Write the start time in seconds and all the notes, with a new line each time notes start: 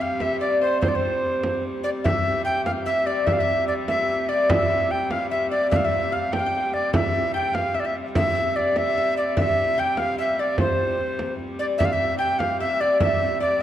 Already playing: C3 G3
0.01 F5
0.20 E5, frame drum
0.40 D5
0.61 C5
0.81 C5, frame drum
0.88 D5
0.95 C5
1.03 frame drum
1.44 frame drum
1.84 D5
2.04 C3 G3 E5, frame drum
2.45 G5, frame drum
2.65 F5, frame drum
2.86 E5, frame drum
3.06 D5
3.26 E5, frame drum
3.32 F5
3.39 E5
3.68 D5, frame drum
3.88 E5, frame drum
4.09 frame drum
4.29 D5
4.49 E5, frame drum
4.91 G5, frame drum
5.10 F5, frame drum
5.30 E5, frame drum
5.51 D5
5.71 E5, frame drum
5.76 F5
5.84 E5
6.12 F5
6.33 G5, frame drum
6.39 F5
6.46 G5
6.54 frame drum
6.74 D5, frame drum
6.93 C3 G3 E5, frame drum
7.34 G5
7.53 F5, frame drum
7.74 E5, frame drum
7.80 D5
7.84 E5
8.15 E5, frame drum
8.35 E5
8.56 D5, frame drum
8.76 E5, frame drum
8.97 E5, frame drum
9.17 D5
9.37 E5, frame drum
9.77 G5, frame drum
9.97 F5, frame drum
10.17 E5, frame drum
10.39 D5
10.58 C5, frame drum
10.98 frame drum
11.19 frame drum
11.39 frame drum
11.59 D5
11.78 C3 G3 E5, frame drum
11.85 F5
11.92 E5
12.18 G5, frame drum
12.39 F5, frame drum
12.60 E5, frame drum
12.80 D5
13.00 E5, frame drum
13.40 D5, frame drum